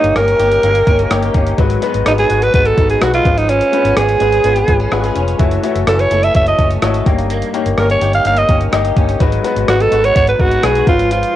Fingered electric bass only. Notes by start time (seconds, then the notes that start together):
0.04 G1
0.16 G1
0.39 G1
0.63 G1
0.87 G1
1.11 G1
1.35 G1
1.59 G#1
1.94 G#1
2.06 G#1
2.30 G#1
2.54 G#1
2.78 G#1
3.01 B1
3.25 G#1
3.85 G#1
3.97 G#1
4.21 G#1
4.44 G#1
4.68 G#1
4.92 G#1
5.16 F1
5.39 F#1
5.75 F#1
5.87 F#1
6.11 F#1
6.35 F#1
6.59 F#1
6.82 G#1
7.06 G1
7.66 G1
7.77 G1
8.01 G1
8.25 G1
8.49 G1
8.73 G1
8.97 G1
9.21 G#1
9.56 G#1
9.68 G#1
9.92 G#1
10.16 G#1
10.40 G#1
10.63 B1
10.87 G#1